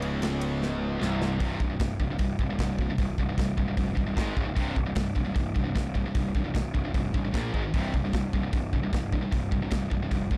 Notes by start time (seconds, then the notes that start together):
Already playing: C#1 C#2
0.02 ride
0.22 snare, ride
0.41 ride
0.62 snare
0.99 C1 C2, snare
1.22 snare
1.39 C1 C2 G2 C3, kick, open hi-hat
1.60 C1 C2 G2, kick
1.70 C2 G2
1.79 C1 C2 G2, kick, snare, open hi-hat
1.99 C1 C2 G2, kick
2.11 C2 G2
2.19 C1 C2 G2, kick, open hi-hat
2.39 C1 C2 G2, kick
2.50 C2 G2
2.59 C1 C2 G2, kick, snare, open hi-hat
2.79 C2 G2, kick
2.90 C2 G2
2.98 C1 C2 G2, kick, open hi-hat
3.18 C1 C2 G2, kick
3.29 C2 G2
3.38 C1 C2 G2, kick, snare, open hi-hat
3.57 C1 C2 G2, kick
3.68 C2 G2
3.77 F1 C2 G2, kick, open hi-hat
3.95 C1 C2 G2, kick
4.06 C2 G2
4.16 G#1 G#2 D#3 G#3, kick, snare, open hi-hat
4.36 C#1 C#2 G#2 C#3, kick
4.47 C#2 G#2
4.55 C1 C2 G2 C3, kick, open hi-hat
4.75 C1 C2 G2, kick
4.86 C2 G2
4.95 C1 C2 G2, kick, snare, open hi-hat
5.15 C1 C2 G2, kick
5.25 C2 G2
5.34 C1 C2 G2, kick, open hi-hat
5.54 C1 C2 G2, kick
5.64 C2 G2
5.75 C1 C2 G2, kick, snare, open hi-hat
5.94 C2 G2, kick
6.05 C2 G2
6.15 C1 C2 G2, kick, open hi-hat
6.35 C1 C2 G2, kick
6.44 C2 G2
6.54 C1 C2 G2, kick, snare, open hi-hat
6.74 C1 C2 G2, kick
6.85 C2 G2
6.94 F1 C2 G2, kick, open hi-hat
7.14 A1 C2 G2, kick
7.24 C2 G2
7.33 A#1 A#2 F3 A#3, kick, snare, open hi-hat
7.54 G#1 G#2 D#3 G#3, kick
7.64 G#2 D#3
7.74 C1 C2 G2 C3, kick, open hi-hat
7.94 C1 C2 G2, kick
8.05 C2 G2
8.13 C1 C2 G2, kick, snare, open hi-hat
8.33 C1 C2 G2, kick
8.43 C2 G2
8.53 C1 C2 G2, kick, open hi-hat
8.73 C1 C2 G2, kick
8.83 C2 G2
8.93 C1 C2 G2, kick, snare, open hi-hat
9.12 C2 G2, kick
9.21 C2 G2
9.31 C1 C2 G2, kick, open hi-hat
9.51 C1 C2 G2, kick
9.62 C2 G2
9.70 C1 C2 G2, kick, snare, open hi-hat
9.90 C1 C2 G2, kick
10.02 C2 G2
10.11 F1 C2 G2, kick, open hi-hat
10.31 C1 C2 G2, kick